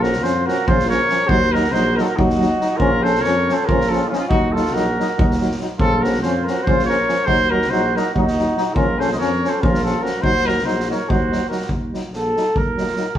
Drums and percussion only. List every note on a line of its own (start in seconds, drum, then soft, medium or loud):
0.03 snare soft
0.12 snare soft
0.24 snare soft
0.48 snare soft
0.68 kick loud
0.79 snare soft
0.90 snare soft
1.09 snare soft
1.29 kick medium
1.54 snare soft
1.64 snare soft
1.74 snare soft
1.98 snare soft
2.19 kick medium
2.29 snare soft
2.41 snare soft
2.60 snare soft
2.80 kick medium
3.05 snare soft
3.15 snare soft
3.24 snare soft
3.49 snare soft
3.69 kick medium
3.80 snare soft
3.92 snare soft
4.13 snare soft
4.31 kick medium
4.56 snare soft
4.65 snare soft
4.75 snare soft
5.00 snare soft
5.19 kick loud
5.31 snare soft
5.41 snare soft
5.51 snare soft
5.60 snare soft
5.79 kick medium
6.04 snare soft
6.13 snare soft
6.22 snare soft
6.47 snare soft
6.67 kick loud
6.79 snare soft
6.90 snare soft
7.08 snare soft
7.28 kick medium
7.61 snare soft
7.72 snare soft
7.96 snare soft
8.16 kick medium
8.27 snare soft
8.38 snare soft
8.57 snare soft
8.76 kick medium
9.00 snare soft
9.11 snare soft
9.21 snare soft
9.44 snare soft
9.63 kick loud
9.74 snare soft
9.85 snare soft
10.05 snare soft
10.24 kick medium
10.36 snare soft
10.48 snare soft
10.58 snare soft
10.67 snare soft
10.80 snare soft
10.91 snare soft
11.10 kick medium
11.32 snare soft
11.51 snare soft
11.60 snare soft
11.69 kick medium
11.94 snare soft
12.13 snare soft
12.36 snare soft
12.56 kick medium
12.77 snare soft
12.87 snare soft
12.96 snare soft
13.15 kick medium